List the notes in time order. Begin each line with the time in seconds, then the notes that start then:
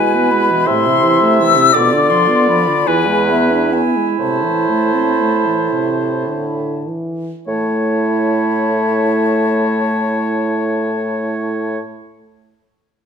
Already playing: B2 G#3 E4 B4 G#5
0.15 B3
0.31 G#3 B5
0.51 E3
0.66 A2 C3 E5 C6
0.86 C3
1.03 E3
1.21 A3
1.38 E3 E6
1.56 C3
1.73 B2 D3 F4 D5 D6
1.93 D3
2.10 F3 C6
2.29 B3
2.48 F3 B5
2.68 D3
2.87 E2 E3 E4 B4 G#5
3.08 G#3
3.29 B3 E5
3.52 D4
3.73 B3 G#5
3.96 G#3
4.19 A2 C3 C5 A5
4.44 E3
4.69 A3
4.95 C4
5.20 A3
5.46 E3
5.72 C3
6.28 D3
6.87 E3
7.48 A2 A3 E4 C#5 A5